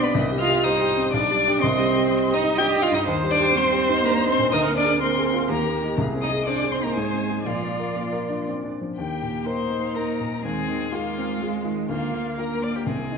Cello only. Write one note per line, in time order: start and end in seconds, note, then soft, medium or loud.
0.02 0.15 B3 medium
0.39 0.65 F4 medium
0.64 1.11 D#4 medium
1.12 1.62 D4 medium
1.61 2.36 C4 loud
2.34 2.61 D#4 medium
2.59 2.85 G4 loud
2.83 2.97 F4 loud
2.95 3.07 D#4 medium
3.31 3.54 D4 medium
3.55 4.05 C4 medium
4.04 4.29 A#3 medium
4.28 4.51 C4 medium
4.51 4.75 D#4 medium
4.77 5.00 D4 medium
5.01 5.51 C4 medium
5.49 5.98 A#3 medium
6.23 6.31 D#4 medium
6.48 6.71 D4 medium
6.71 6.85 C4 medium
6.83 6.97 A#3 medium
6.95 7.45 G#3 medium
7.46 8.44 F3 medium
8.97 9.92 A#3 soft
9.95 10.43 A#3 medium
10.44 10.92 G#3 medium
10.93 11.88 G#3 medium
11.90 12.35 A#3 medium
12.38 12.88 A#3 soft
12.87 13.18 D#3 soft